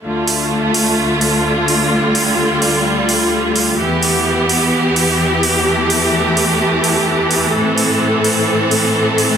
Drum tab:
HH |-o-o-o-o|-o-o-o-o|-o-o-o-o|-o-o-o-o|

HH |-o-o-o-o|